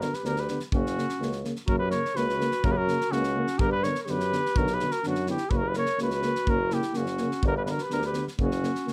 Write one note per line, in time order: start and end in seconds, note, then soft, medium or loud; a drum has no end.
0.00 0.11 D3 medium
0.00 0.11 B3 medium
0.00 0.15 F#4 medium
0.00 0.16 A#4 medium
0.00 snare soft
0.13 0.24 G4 medium
0.13 0.27 B4 medium
0.13 snare soft
0.24 0.50 D2 medium
0.24 0.35 D3 medium
0.24 0.34 B3 medium
0.24 0.37 G4 medium
0.24 0.41 A#4 medium
0.24 snare soft
0.36 0.61 G4 medium
0.36 0.62 B4 medium
0.36 snare soft
0.48 0.58 D3 medium
0.48 0.59 B3 medium
0.48 snare soft
0.60 snare soft
0.72 0.99 F#1 medium
0.72 0.83 C#3 medium
0.72 0.82 A#3 medium
0.72 1.40 C#4 medium
0.72 1.41 F#4 medium
0.72 kick medium
0.86 snare soft
0.96 1.06 C#3 medium
0.96 1.06 A#3 medium
0.96 snare soft
1.09 snare soft
1.20 1.46 C#2 medium
1.20 1.29 C#3 medium
1.20 1.30 A#3 medium
1.20 snare soft
1.32 snare soft
1.44 1.53 C#3 medium
1.44 1.54 A#3 medium
1.44 snare soft
1.56 snare soft
1.67 1.95 F#2 medium
1.67 1.79 C#3 medium
1.67 1.78 A#3 medium
1.67 1.79 F#4 medium
1.67 1.78 A#4 loud
1.67 kick medium
1.78 1.90 G4 medium
1.78 1.90 B4 loud
1.90 2.03 C#3 medium
1.90 2.01 A#3 medium
1.90 2.17 A#4 medium
1.90 2.18 C#5 medium
1.90 snare soft
2.05 snare soft
2.15 2.42 C#2 medium
2.15 2.25 C#3 medium
2.15 2.26 A#3 medium
2.15 2.64 F#4 medium
2.15 2.66 B4 loud
2.15 snare soft
2.29 snare soft
2.39 2.49 C#3 medium
2.39 2.50 A#3 medium
2.39 snare soft
2.51 snare soft
2.64 2.90 F#2 loud
2.64 2.74 C#3 medium
2.64 2.74 A#3 medium
2.64 2.73 F#4 medium
2.64 2.73 A#4 loud
2.64 kick medium
2.71 2.79 G4 medium
2.71 2.78 B4 medium
2.77 3.14 F#4 medium
2.77 3.13 A#4 loud
2.88 2.98 C#3 medium
2.88 2.98 A#3 medium
2.88 snare soft
3.01 snare soft
3.10 3.39 C#2 medium
3.10 3.20 C#3 medium
3.10 3.22 A#3 medium
3.10 3.60 C#4 medium
3.10 3.61 F#4 loud
3.10 snare soft
3.23 snare soft
3.36 3.46 C#3 medium
3.36 3.45 A#3 medium
3.47 snare soft
3.59 3.87 G2 loud
3.59 3.69 D3 medium
3.59 3.70 B3 medium
3.59 3.68 G4 loud
3.59 3.71 A#4 loud
3.59 kick loud
3.69 3.83 G4 medium
3.69 3.85 B4 loud
3.81 3.93 D3 medium
3.81 3.99 A#4 medium
3.81 4.02 C#5 loud
3.81 snare soft
3.87 3.96 B3 medium
3.95 4.07 A#4 medium
3.95 snare soft
4.02 4.56 G4 medium
4.02 4.12 C#5 medium
4.07 4.35 F#2 medium
4.07 4.17 D3 medium
4.07 4.18 B3 medium
4.07 4.59 B4 loud
4.07 snare soft
4.20 snare soft
4.32 4.41 D3 medium
4.32 4.42 B3 medium
4.32 snare soft
4.46 snare soft
4.55 4.83 B1 loud
4.55 4.66 D3 medium
4.55 4.67 B3 medium
4.55 4.70 F#4 medium
4.55 4.75 A#4 loud
4.55 kick loud
4.67 4.88 G4 medium
4.67 snare soft
4.74 4.93 B4 loud
4.80 4.91 D3 medium
4.80 4.91 B3 medium
4.80 snare soft
4.87 5.02 F#4 medium
4.91 5.06 A#4 medium
4.91 snare soft
5.03 5.32 F#2 medium
5.03 5.14 D3 medium
5.03 5.14 B3 medium
5.03 5.25 D4 medium
5.03 snare soft
5.08 5.28 F#4 medium
5.15 snare soft
5.26 5.38 D3 medium
5.26 5.38 B3 medium
5.26 5.47 E4 medium
5.26 5.51 G4 medium
5.26 snare soft
5.37 snare soft
5.46 5.53 G4 medium
5.50 5.78 F#1 medium
5.50 5.60 C#3 medium
5.50 5.61 A#3 medium
5.50 5.65 F#4 medium
5.50 5.58 B4 medium
5.50 kick medium
5.57 5.70 A#4 loud
5.63 5.74 G4 medium
5.68 5.78 B4 medium
5.74 5.87 C#3 medium
5.74 5.85 A#3 medium
5.74 5.97 A#4 medium
5.74 snare soft
5.78 5.99 C#5 loud
5.86 snare soft
5.98 6.26 C#2 medium
5.98 6.09 C#3 medium
5.98 6.08 A#3 medium
5.98 6.49 F#4 medium
5.98 6.51 B4 medium
5.98 snare soft
6.10 snare soft
6.22 6.32 C#3 medium
6.22 6.33 A#3 medium
6.22 snare soft
6.35 snare soft
6.47 6.74 F#1 medium
6.47 6.58 C#3 medium
6.47 6.56 A#3 medium
6.47 6.73 F#4 medium
6.47 6.75 A#4 loud
6.47 kick medium
6.70 6.81 C#3 medium
6.70 6.81 A#3 medium
6.70 6.97 E4 medium
6.70 6.98 G4 medium
6.70 snare soft
6.82 snare soft
6.94 7.23 F#1 medium
6.94 7.05 C#3 medium
6.94 7.03 A#3 medium
6.94 7.43 C#4 medium
6.94 7.43 F#4 medium
6.94 snare soft
7.06 snare soft
7.18 7.30 C#3 medium
7.18 7.28 A#3 medium
7.18 snare soft
7.31 snare soft
7.42 7.70 G1 loud
7.42 7.53 D3 medium
7.42 7.52 B3 medium
7.42 7.55 G4 medium
7.42 kick medium
7.47 7.56 A#4 loud
7.57 7.62 G4 medium
7.57 7.61 B4 medium
7.65 7.75 B3 medium
7.65 7.73 G4 soft
7.65 7.81 A#4 medium
7.65 7.70 B4 medium
7.65 snare soft
7.69 7.78 D3 medium
7.69 7.86 F#4 medium
7.78 7.94 B4 medium
7.78 snare soft
7.85 7.96 G4 medium
7.90 8.18 D2 medium
7.90 8.00 D3 medium
7.90 8.00 B3 medium
7.90 8.03 A#4 medium
7.90 snare soft
7.96 8.05 G4 medium
8.02 8.26 B4 medium
8.02 snare soft
8.07 8.27 G4 medium
8.13 8.25 D3 medium
8.13 8.23 B3 medium
8.13 snare soft
8.28 snare soft
8.39 8.65 F#1 loud
8.39 8.48 C#3 medium
8.39 8.48 A#3 medium
8.39 8.93 C#4 medium
8.39 8.93 F#4 medium
8.39 kick medium
8.51 snare soft
8.62 8.71 C#3 medium
8.62 8.71 A#3 medium
8.62 snare soft
8.75 snare soft
8.86 8.93 C#2 medium
8.86 8.93 C#3 medium
8.86 8.93 A#3 medium
8.86 snare soft